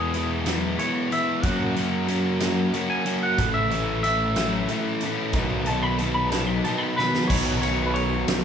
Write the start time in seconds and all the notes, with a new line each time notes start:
Already playing: E2 E3 G#3 B3 E4 G#4
0.14 E3 G#3 B3 E4, closed hi-hat
0.45 E3 G#3 B3 E4, snare, closed hi-hat
0.78 E3 G#3 B3 E4 C#5, closed hi-hat
1.10 E3 G#3 B3 E4 E5, closed hi-hat
1.43 F#2 F#3 A#3 C#4 F#4 F#5, kick, closed hi-hat
1.75 F#3 A#3 C#4 F#4, closed hi-hat
2.07 F#3 A#3 C#4 F#4, closed hi-hat
2.40 F#3 A#3 C#4 F#4, snare, closed hi-hat
2.73 F#3 A#3 C#4 F#4, closed hi-hat
2.90 G#5
3.05 F#3 A#3 C#4 F#4, closed hi-hat
3.23 F#5
3.38 A1 A2 E3 A3 C#4 E4, kick, closed hi-hat
3.54 E5
3.71 A2 E3 A3 C#4 E4, closed hi-hat
4.03 A2 E3 A3 C#4 E4 E5, closed hi-hat
4.36 A2 E3 A3 C#4 E4, snare, closed hi-hat
4.69 A2 E3 A3 C#4 E4, closed hi-hat
5.01 A2 E3 A3 C#4 E4, closed hi-hat
5.33 B1 B2 D#3 F#3 B3 D#4, kick, closed hi-hat
5.66 B2 D#3 F#3 B3 D#4 A5, closed hi-hat
5.83 B5
5.98 B2 D#3 F#3 B3 D#4 A5, closed hi-hat
6.14 B5
6.30 B2 A5, snare, closed hi-hat
6.34 D#3 F#3 B3 D#4
6.47 B5
6.64 B2 D#3 F#3 B3 D#4 A5, closed hi-hat
6.78 B5
6.96 B2 D#3 F#3 B3 D#4 B4 B5, snare
7.15 snare
7.28 B1 B2 D#3 F#3 B3 C#5, kick, crash
7.32 D#4
7.62 C#5, ride
7.86 B4
7.94 C#5, ride
8.27 B1, snare, ride